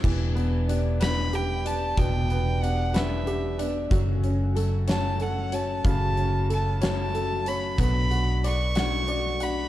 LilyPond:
<<
  \new Staff \with { instrumentName = "Violin" } { \time 6/8 \key e \dorian \tempo 4. = 62 r4. b''8 g''8 a''8 | g''4 fis''8 e''4 r8 | r4. a''8 fis''8 a''8 | a''4 a''8 a''4 b''8 |
b''4 cis'''4. b''8 | }
  \new Staff \with { instrumentName = "Upright piano" } { \time 6/8 \key e \dorian e8 b8 d'8 b'8 g'8 d'8 | b,8 b8 d'8 b'8 g'8 d'8 | fis8 cis'8 a'8 cis''8 a'8 cis''8 | cis8 cis'8 a'8 cis''8 a'8 cis''8 |
b8 fis'8 d''8 fis''8 d''8 fis''8 | }
  \new Staff \with { instrumentName = "Steel-string acoustic guitar" } { \time 6/8 \key e \dorian <e b d' g'>4 <e b d' g'>8 <e b d' g'>4 <b d' g'>8 | <e b d' g'>4 <e b d' g'>8 <e b d' g'>4 <b d' g'>8 | <fis, cis fis a cis' fis'>4 <fis a cis' fis'>8 <fis, cis fis a cis' fis'>4 <fis a cis' fis'>8 | <fis, cis fis a cis' fis'>4 <fis a cis' fis'>8 <fis, cis fis a cis' fis'>4 <fis a cis' fis'>8 |
<b, fis a d' fis'>4 <fis a d' fis'>8 <b, fis a d' fis'>4 <a d' fis'>8 | }
  \new Staff \with { instrumentName = "Fingered electric bass" } { \clef bass \time 6/8 \key e \dorian e,,2. | e,,2. | fis,,2. | fis,,2. |
b,,2. | }
  \new DrumStaff \with { instrumentName = "Drums" } \drummode { \time 6/8 <cymc bd>8 hh8 hh8 <hh sn>8 hh8 hh8 | <hh bd>8 hh8 hh8 <hh sn>8 hh8 hh8 | <hh bd>8 hh8 hh8 <hh sn>8 hh8 hh8 | <hh bd>8 hh8 hh8 <hh sn>8 hh8 hh8 |
<hh bd>8 hh8 hh8 <hh sn>8 hh8 hh8 | }
>>